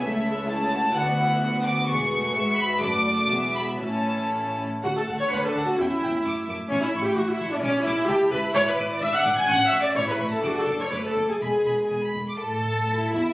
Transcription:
<<
  \new Staff \with { instrumentName = "Violin section" } { \time 2/4 \key a \major \tempo 4 = 128 e''4 a''4 | fis''4. d'''8 | cis'''4. b''8 | d'''4. b''8 |
a''4. r8 | \key d \major fis''8 fis''8 fis''8 fis''8 | g''8 g''8 d'''8 d'''8 | cis'''8 cis'''8 cis'''8 cis'''8 |
d'''8 d'''8 a''8 a''8 | \key e \mixolydian d'''8 d'''8 d'''8 d'''8 | cis'''8 cis'''8 cis'''8 cis'''8 | d'''8 d'''8 d'''8 d'''8 |
b''8 b''8 gis''16 b''8 d'''16 | a'4. e'8 | }
  \new Staff \with { instrumentName = "Violin section" } { \time 2/4 \key a \major << { cis''2 | b'2 | b'4 e''4 | d''8 d''8 e''4 |
cis''4. r8 | \key d \major fis''16 a''8 cis'''16 b''16 a''8 fis''16 | e''4. r8 | cis''16 e''8 g''16 fis''16 e''8 d''16 |
cis''8 e''8 g''8 b''8 | \key e \mixolydian cis'''16 b''8 d'''16 e'''16 fis'''8 gis'''16 | \tuplet 3/2 { fis'''8 e'''8 d'''8 } cis'''16 b''8 a''16 | fis''16 a''8 cis'''16 b''16 a''8 gis''16 |
gis''4 r4 | a''4. e''8 | } \\ { a'4 gis'8 fis'8 | fis'2 | gis'4 b'8 b'8 | a'4 gis'8 gis'8 |
a'4. r8 | r2 | r2 | r2 |
r2 | r2 | r2 | r2 |
r2 | r2 | } >> }
  \new Staff \with { instrumentName = "Viola section" } { \time 2/4 \key a \major << { e'4 e'4 | d'8 e'8 fis'4~ | fis'2~ | fis'4 fis'4 |
e'4. r8 | \key d \major fis'16 a'8 cis''16 b'16 a'8 fis'16 | e'4. r8 | cis'16 e'8 g'16 fis'16 e'8 d'16 |
cis'8 e'8 g'8 b'8 | \key e \mixolydian cis''16 b'8 d''16 e''16 fis''8 gis''16 | \tuplet 3/2 { fis''8 e''8 d''8 } cis''16 b'8 a'16 | fis'16 a'8 cis''16 b'16 a'8 gis'16 |
gis'4 r4 | r4 e'4 | } \\ { a8 gis8 a4 | b2 | b8 a8 gis4 | a4 b4 |
cis'4. r8 | r2 | r2 | r2 |
r2 | r2 | r2 | r2 |
r2 | r2 | } >> }
  \new Staff \with { instrumentName = "Cello section" } { \time 2/4 \key a \major cis2 | d2 | e,4 gis,4 | fis,4 e,4 |
a,4. r8 | \key d \major a4 d'4 | cis'4 a4~ | a2 |
gis4 e'4~ | \key e \mixolydian e'4 d'4 | cis'4 e'4 | d'4 a4 |
gis4. r8 | a'4. e'8 | }
  \new Staff \with { instrumentName = "Double bass section" } { \clef bass \time 2/4 \key a \major cis,2 | d,2 | e,,4 gis,,4 | fis,,4 e,,4 |
a,,4. r8 | \key d \major d,8 d,8 d,8 d,8 | e,8 e,8 fis,8 fis,8 | a,,8 a,,8 a,,8 a,,8 |
b,,8 b,,8 cis,8 cis,8 | \key e \mixolydian gis,,8 gis,,8 gis,,8 gis,,8 | a,,8 a,,8 a,,8 a,,8 | fis,,8 fis,,8 fis,,8 fis,,8 |
e,,8 e,,8 e,,8 e,,8 | a,4. e,8 | }
>>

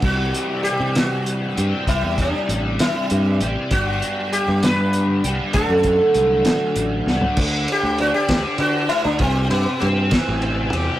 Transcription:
<<
  \new Staff \with { instrumentName = "Sitar" } { \time 6/8 \key c \lydian \tempo 4. = 65 fis'4 g'8 fis'4. | e'8 d'4 e'4 r8 | fis'4 g'8 b'4 r8 | a'2 r4 |
r8 g'8 fis'16 g'8. fis'8 e'16 d'16 | c'8 b8 a8 r4. | }
  \new Staff \with { instrumentName = "Overdriven electric guitar" } { \clef bass \time 6/8 \key c \lydian <c e g c' g'>2~ <c e g c' g'>8 <c e g c' g'>8 | <c e g c' g'>2~ <c e g c' g'>8 <c e g c' g'>8 | <g, d g b d' g'>2~ <g, d g b d' g'>8 <g, d g b d' g'>8 | <d fis a d' fis'>2~ <d fis a d' fis'>8 <d fis a d' fis'>8 |
d4 d'8 d8 d'8 fis'8 | c4 c'8 e8 c'8 g'8 | }
  \new Staff \with { instrumentName = "Fingered electric bass" } { \clef bass \time 6/8 \key c \lydian c,8 r8. c4~ c16 g,16 r16 | c,16 e,8 r16 a,,8 r8 g,8 a,,16 r16 | g,,8 r8. g,4~ g,16 c,16 r16 | d,16 fis,8 r16 c,8 r8 a,,8 c,16 r16 |
d,8 r16 d,8 r16 d,16 r16 d8 r16 d,16 | c,8 g,16 r16 g,8 r16 a,,8. e,16 r16 | }
  \new DrumStaff \with { instrumentName = "Drums" } \drummode { \time 6/8 <cymc bd>8 hh8 hh8 <hh sn>8 hh8 hh8 | <hh bd>8 <hh bd>8 hh8 <hh sn>8 hh8 hh8 | <hh bd>8 hh8 hh8 <hh sn>8 hh8 hh8 | <hh bd>8 <hh bd>8 hh8 <hh sn>8 hh8 sn16 tomfh16 |
<cymc bd>8 cymr8 cymr8 <bd cymr sn>8 cymr8 cymr8 | <bd cymr>8 cymr8 cymr8 <bd cymr sn>8 cymr8 cymr8 | }
>>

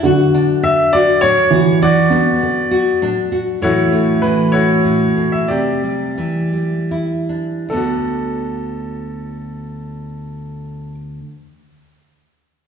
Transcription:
<<
  \new Staff \with { instrumentName = "Grand piano" } { \time 3/4 \key d \major \tempo 4 = 91 << { r4 e''8 d''8 cis''4 | d''2 r4 | cis''4 b'8 cis''4~ cis''16 e''16 | d''2 r4 |
a'2.~ | a'2. | } \\ { r2. | fis'2 r4 | <e' fis'>4. <e' fis'>4. | g'2 r4 |
r2. | r2. | } >> }
  \new Staff \with { instrumentName = "Nylon-string guitar" } { \time 3/4 \key d \major << { fis'8 d'4 fis'8 d'8 fis'8 | fis'8 d'4 fis'8 d'8 fis'8 | <e a cis' fis'>8 a4 a4. | r8 g4 g8 e'8 d'8 |
<d b d' fis'>2.~ | <d b d' fis'>2. | } \\ { d,4 d4 a,4 | d,4 d4 a,4 | a,4 e4 a,8 b,8 | c4 e2 |
d,2.~ | d,2. | } >> }
  \new Staff \with { instrumentName = "Felt piano" } { \clef bass \time 3/4 \key d \major d2~ d8 e8~ | e8 b2~ b8 | r2. | r2. |
r2. | r2. | }
>>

